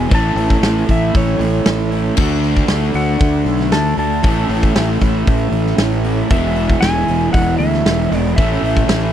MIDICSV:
0, 0, Header, 1, 7, 480
1, 0, Start_track
1, 0, Tempo, 516796
1, 102, Time_signature, 4, 2, 24, 8
1, 8476, End_track
2, 0, Start_track
2, 0, Title_t, "Electric slide guitar"
2, 0, Program_c, 0, 29
2, 136, Note_on_c, 0, 81, 108
2, 846, Note_on_c, 0, 76, 92
2, 860, Note_off_c, 0, 81, 0
2, 1058, Note_off_c, 0, 76, 0
2, 1087, Note_on_c, 0, 73, 87
2, 1757, Note_off_c, 0, 73, 0
2, 2744, Note_on_c, 0, 78, 83
2, 3460, Note_on_c, 0, 81, 100
2, 3484, Note_off_c, 0, 78, 0
2, 3696, Note_off_c, 0, 81, 0
2, 3708, Note_on_c, 0, 81, 101
2, 4627, Note_off_c, 0, 81, 0
2, 5859, Note_on_c, 0, 76, 102
2, 6306, Note_off_c, 0, 76, 0
2, 6321, Note_on_c, 0, 80, 118
2, 6803, Note_off_c, 0, 80, 0
2, 6807, Note_on_c, 0, 78, 110
2, 7042, Note_off_c, 0, 78, 0
2, 7046, Note_on_c, 0, 76, 93
2, 7593, Note_off_c, 0, 76, 0
2, 7593, Note_on_c, 0, 74, 93
2, 7757, Note_off_c, 0, 74, 0
2, 7768, Note_on_c, 0, 76, 85
2, 8476, Note_off_c, 0, 76, 0
2, 8476, End_track
3, 0, Start_track
3, 0, Title_t, "Overdriven electric guitar"
3, 0, Program_c, 1, 29
3, 0, Note_on_c, 1, 56, 73
3, 89, Note_on_c, 1, 45, 102
3, 96, Note_off_c, 1, 56, 0
3, 99, Note_on_c, 1, 52, 98
3, 110, Note_on_c, 1, 57, 103
3, 118, Note_on_c, 1, 61, 113
3, 121, Note_on_c, 1, 64, 117
3, 1761, Note_off_c, 1, 45, 0
3, 1763, Note_off_c, 1, 64, 0
3, 1766, Note_off_c, 1, 52, 0
3, 1774, Note_on_c, 1, 64, 83
3, 1775, Note_off_c, 1, 61, 0
3, 1787, Note_on_c, 1, 61, 82
3, 1790, Note_off_c, 1, 57, 0
3, 1794, Note_on_c, 1, 57, 80
3, 1803, Note_on_c, 1, 52, 76
3, 1806, Note_on_c, 1, 45, 68
3, 1998, Note_off_c, 1, 52, 0
3, 2002, Note_on_c, 1, 50, 98
3, 2004, Note_off_c, 1, 64, 0
3, 2008, Note_off_c, 1, 57, 0
3, 2010, Note_off_c, 1, 61, 0
3, 2011, Note_on_c, 1, 57, 104
3, 2019, Note_off_c, 1, 45, 0
3, 2024, Note_on_c, 1, 62, 100
3, 2031, Note_on_c, 1, 66, 108
3, 3677, Note_off_c, 1, 50, 0
3, 3681, Note_off_c, 1, 66, 0
3, 3682, Note_off_c, 1, 57, 0
3, 3688, Note_off_c, 1, 62, 0
3, 3692, Note_on_c, 1, 66, 84
3, 3703, Note_on_c, 1, 62, 82
3, 3712, Note_on_c, 1, 57, 75
3, 3720, Note_on_c, 1, 50, 72
3, 3922, Note_off_c, 1, 66, 0
3, 3928, Note_off_c, 1, 62, 0
3, 3932, Note_off_c, 1, 57, 0
3, 3932, Note_on_c, 1, 45, 94
3, 3936, Note_off_c, 1, 50, 0
3, 3943, Note_on_c, 1, 52, 110
3, 3947, Note_on_c, 1, 57, 100
3, 3952, Note_on_c, 1, 61, 117
3, 3960, Note_on_c, 1, 64, 102
3, 5601, Note_off_c, 1, 45, 0
3, 5609, Note_off_c, 1, 57, 0
3, 5609, Note_off_c, 1, 64, 0
3, 5612, Note_off_c, 1, 61, 0
3, 5613, Note_on_c, 1, 64, 90
3, 5624, Note_on_c, 1, 61, 90
3, 5630, Note_on_c, 1, 57, 74
3, 5634, Note_off_c, 1, 52, 0
3, 5637, Note_on_c, 1, 52, 81
3, 5646, Note_on_c, 1, 45, 76
3, 5835, Note_off_c, 1, 52, 0
3, 5839, Note_on_c, 1, 52, 116
3, 5848, Note_off_c, 1, 61, 0
3, 5849, Note_off_c, 1, 57, 0
3, 5852, Note_on_c, 1, 56, 115
3, 5859, Note_off_c, 1, 45, 0
3, 5862, Note_on_c, 1, 59, 107
3, 5869, Note_off_c, 1, 64, 0
3, 5873, Note_on_c, 1, 64, 107
3, 7509, Note_off_c, 1, 64, 0
3, 7515, Note_off_c, 1, 52, 0
3, 7520, Note_on_c, 1, 64, 94
3, 7522, Note_off_c, 1, 56, 0
3, 7522, Note_off_c, 1, 59, 0
3, 7533, Note_on_c, 1, 59, 87
3, 7545, Note_on_c, 1, 56, 83
3, 7551, Note_on_c, 1, 52, 72
3, 7756, Note_off_c, 1, 64, 0
3, 7762, Note_off_c, 1, 59, 0
3, 7767, Note_off_c, 1, 52, 0
3, 7768, Note_off_c, 1, 56, 0
3, 7773, Note_on_c, 1, 45, 112
3, 7778, Note_on_c, 1, 52, 96
3, 7786, Note_on_c, 1, 57, 107
3, 7795, Note_on_c, 1, 61, 103
3, 7799, Note_on_c, 1, 64, 117
3, 8476, Note_off_c, 1, 45, 0
3, 8476, Note_off_c, 1, 52, 0
3, 8476, Note_off_c, 1, 57, 0
3, 8476, Note_off_c, 1, 61, 0
3, 8476, Note_off_c, 1, 64, 0
3, 8476, End_track
4, 0, Start_track
4, 0, Title_t, "Distorted electric guitar"
4, 0, Program_c, 2, 30
4, 0, Note_on_c, 2, 52, 87
4, 97, Note_off_c, 2, 52, 0
4, 5890, Note_on_c, 2, 52, 103
4, 7780, Note_off_c, 2, 52, 0
4, 8476, End_track
5, 0, Start_track
5, 0, Title_t, "Distorted electric guitar"
5, 0, Program_c, 3, 30
5, 0, Note_on_c, 3, 64, 110
5, 95, Note_off_c, 3, 64, 0
5, 5847, Note_on_c, 3, 40, 89
5, 5855, Note_on_c, 3, 47, 91
5, 7759, Note_off_c, 3, 40, 0
5, 7763, Note_off_c, 3, 47, 0
5, 8476, End_track
6, 0, Start_track
6, 0, Title_t, "Fingered electric bass"
6, 0, Program_c, 4, 33
6, 104, Note_on_c, 4, 33, 100
6, 304, Note_off_c, 4, 33, 0
6, 329, Note_on_c, 4, 33, 98
6, 535, Note_off_c, 4, 33, 0
6, 568, Note_on_c, 4, 33, 89
6, 775, Note_off_c, 4, 33, 0
6, 824, Note_on_c, 4, 33, 87
6, 1024, Note_off_c, 4, 33, 0
6, 1068, Note_on_c, 4, 33, 91
6, 1266, Note_off_c, 4, 33, 0
6, 1286, Note_on_c, 4, 33, 91
6, 1494, Note_off_c, 4, 33, 0
6, 1543, Note_on_c, 4, 33, 84
6, 1944, Note_off_c, 4, 33, 0
6, 2018, Note_on_c, 4, 38, 104
6, 2421, Note_off_c, 4, 38, 0
6, 2499, Note_on_c, 4, 38, 86
6, 2701, Note_off_c, 4, 38, 0
6, 2734, Note_on_c, 4, 38, 89
6, 2938, Note_off_c, 4, 38, 0
6, 2976, Note_on_c, 4, 38, 92
6, 3179, Note_off_c, 4, 38, 0
6, 3202, Note_on_c, 4, 35, 89
6, 3411, Note_off_c, 4, 35, 0
6, 3443, Note_on_c, 4, 38, 88
6, 3652, Note_off_c, 4, 38, 0
6, 3692, Note_on_c, 4, 38, 93
6, 3896, Note_off_c, 4, 38, 0
6, 3936, Note_on_c, 4, 33, 102
6, 4139, Note_off_c, 4, 33, 0
6, 4168, Note_on_c, 4, 33, 99
6, 4374, Note_off_c, 4, 33, 0
6, 4419, Note_on_c, 4, 33, 95
6, 4620, Note_off_c, 4, 33, 0
6, 4656, Note_on_c, 4, 33, 86
6, 4859, Note_off_c, 4, 33, 0
6, 4897, Note_on_c, 4, 33, 87
6, 5099, Note_off_c, 4, 33, 0
6, 5125, Note_on_c, 4, 33, 97
6, 5332, Note_off_c, 4, 33, 0
6, 5370, Note_on_c, 4, 33, 89
6, 5776, Note_off_c, 4, 33, 0
6, 5853, Note_on_c, 4, 28, 100
6, 6258, Note_off_c, 4, 28, 0
6, 6331, Note_on_c, 4, 28, 92
6, 6536, Note_off_c, 4, 28, 0
6, 6586, Note_on_c, 4, 28, 86
6, 6784, Note_off_c, 4, 28, 0
6, 6811, Note_on_c, 4, 28, 103
6, 7016, Note_off_c, 4, 28, 0
6, 7050, Note_on_c, 4, 38, 91
6, 7255, Note_off_c, 4, 38, 0
6, 7296, Note_on_c, 4, 28, 87
6, 7498, Note_off_c, 4, 28, 0
6, 7535, Note_on_c, 4, 28, 94
6, 7738, Note_off_c, 4, 28, 0
6, 7783, Note_on_c, 4, 33, 104
6, 7983, Note_off_c, 4, 33, 0
6, 8010, Note_on_c, 4, 33, 94
6, 8215, Note_off_c, 4, 33, 0
6, 8243, Note_on_c, 4, 33, 93
6, 8451, Note_off_c, 4, 33, 0
6, 8476, End_track
7, 0, Start_track
7, 0, Title_t, "Drums"
7, 100, Note_on_c, 9, 46, 93
7, 106, Note_on_c, 9, 36, 122
7, 193, Note_off_c, 9, 46, 0
7, 199, Note_off_c, 9, 36, 0
7, 347, Note_on_c, 9, 46, 68
7, 439, Note_off_c, 9, 46, 0
7, 467, Note_on_c, 9, 36, 88
7, 560, Note_off_c, 9, 36, 0
7, 586, Note_on_c, 9, 46, 94
7, 588, Note_on_c, 9, 38, 124
7, 679, Note_off_c, 9, 46, 0
7, 680, Note_off_c, 9, 38, 0
7, 826, Note_on_c, 9, 36, 79
7, 826, Note_on_c, 9, 46, 59
7, 919, Note_off_c, 9, 36, 0
7, 919, Note_off_c, 9, 46, 0
7, 1061, Note_on_c, 9, 46, 78
7, 1066, Note_on_c, 9, 36, 107
7, 1154, Note_off_c, 9, 46, 0
7, 1159, Note_off_c, 9, 36, 0
7, 1306, Note_on_c, 9, 46, 66
7, 1399, Note_off_c, 9, 46, 0
7, 1539, Note_on_c, 9, 46, 81
7, 1541, Note_on_c, 9, 38, 125
7, 1632, Note_off_c, 9, 46, 0
7, 1633, Note_off_c, 9, 38, 0
7, 1780, Note_on_c, 9, 46, 60
7, 1873, Note_off_c, 9, 46, 0
7, 2013, Note_on_c, 9, 49, 103
7, 2023, Note_on_c, 9, 36, 118
7, 2106, Note_off_c, 9, 49, 0
7, 2116, Note_off_c, 9, 36, 0
7, 2260, Note_on_c, 9, 46, 63
7, 2353, Note_off_c, 9, 46, 0
7, 2383, Note_on_c, 9, 36, 85
7, 2475, Note_off_c, 9, 36, 0
7, 2491, Note_on_c, 9, 46, 98
7, 2493, Note_on_c, 9, 38, 111
7, 2584, Note_off_c, 9, 46, 0
7, 2586, Note_off_c, 9, 38, 0
7, 2731, Note_on_c, 9, 46, 67
7, 2824, Note_off_c, 9, 46, 0
7, 2965, Note_on_c, 9, 46, 89
7, 2979, Note_on_c, 9, 36, 113
7, 3058, Note_off_c, 9, 46, 0
7, 3072, Note_off_c, 9, 36, 0
7, 3214, Note_on_c, 9, 46, 73
7, 3307, Note_off_c, 9, 46, 0
7, 3343, Note_on_c, 9, 38, 37
7, 3436, Note_off_c, 9, 38, 0
7, 3454, Note_on_c, 9, 46, 90
7, 3456, Note_on_c, 9, 38, 110
7, 3547, Note_off_c, 9, 46, 0
7, 3549, Note_off_c, 9, 38, 0
7, 3693, Note_on_c, 9, 46, 73
7, 3785, Note_off_c, 9, 46, 0
7, 3929, Note_on_c, 9, 46, 89
7, 3939, Note_on_c, 9, 36, 120
7, 4022, Note_off_c, 9, 46, 0
7, 4032, Note_off_c, 9, 36, 0
7, 4177, Note_on_c, 9, 46, 73
7, 4270, Note_off_c, 9, 46, 0
7, 4301, Note_on_c, 9, 36, 90
7, 4394, Note_off_c, 9, 36, 0
7, 4417, Note_on_c, 9, 46, 90
7, 4419, Note_on_c, 9, 38, 127
7, 4510, Note_off_c, 9, 46, 0
7, 4512, Note_off_c, 9, 38, 0
7, 4649, Note_on_c, 9, 46, 67
7, 4658, Note_on_c, 9, 36, 80
7, 4742, Note_off_c, 9, 46, 0
7, 4751, Note_off_c, 9, 36, 0
7, 4897, Note_on_c, 9, 46, 82
7, 4899, Note_on_c, 9, 36, 114
7, 4990, Note_off_c, 9, 46, 0
7, 4992, Note_off_c, 9, 36, 0
7, 5130, Note_on_c, 9, 46, 61
7, 5223, Note_off_c, 9, 46, 0
7, 5262, Note_on_c, 9, 38, 37
7, 5354, Note_off_c, 9, 38, 0
7, 5371, Note_on_c, 9, 46, 88
7, 5372, Note_on_c, 9, 38, 118
7, 5463, Note_off_c, 9, 46, 0
7, 5465, Note_off_c, 9, 38, 0
7, 5613, Note_on_c, 9, 46, 65
7, 5706, Note_off_c, 9, 46, 0
7, 5849, Note_on_c, 9, 46, 87
7, 5858, Note_on_c, 9, 36, 127
7, 5942, Note_off_c, 9, 46, 0
7, 5951, Note_off_c, 9, 36, 0
7, 6093, Note_on_c, 9, 46, 62
7, 6186, Note_off_c, 9, 46, 0
7, 6218, Note_on_c, 9, 36, 89
7, 6311, Note_off_c, 9, 36, 0
7, 6337, Note_on_c, 9, 46, 91
7, 6339, Note_on_c, 9, 38, 122
7, 6430, Note_off_c, 9, 46, 0
7, 6432, Note_off_c, 9, 38, 0
7, 6577, Note_on_c, 9, 46, 64
7, 6670, Note_off_c, 9, 46, 0
7, 6813, Note_on_c, 9, 46, 95
7, 6818, Note_on_c, 9, 36, 108
7, 6906, Note_off_c, 9, 46, 0
7, 6911, Note_off_c, 9, 36, 0
7, 7057, Note_on_c, 9, 46, 65
7, 7150, Note_off_c, 9, 46, 0
7, 7186, Note_on_c, 9, 38, 38
7, 7279, Note_off_c, 9, 38, 0
7, 7300, Note_on_c, 9, 46, 92
7, 7302, Note_on_c, 9, 38, 112
7, 7393, Note_off_c, 9, 46, 0
7, 7395, Note_off_c, 9, 38, 0
7, 7548, Note_on_c, 9, 46, 69
7, 7641, Note_off_c, 9, 46, 0
7, 7783, Note_on_c, 9, 36, 123
7, 7789, Note_on_c, 9, 46, 94
7, 7876, Note_off_c, 9, 36, 0
7, 7882, Note_off_c, 9, 46, 0
7, 8031, Note_on_c, 9, 46, 67
7, 8124, Note_off_c, 9, 46, 0
7, 8141, Note_on_c, 9, 36, 92
7, 8234, Note_off_c, 9, 36, 0
7, 8257, Note_on_c, 9, 46, 101
7, 8259, Note_on_c, 9, 38, 125
7, 8350, Note_off_c, 9, 46, 0
7, 8351, Note_off_c, 9, 38, 0
7, 8476, End_track
0, 0, End_of_file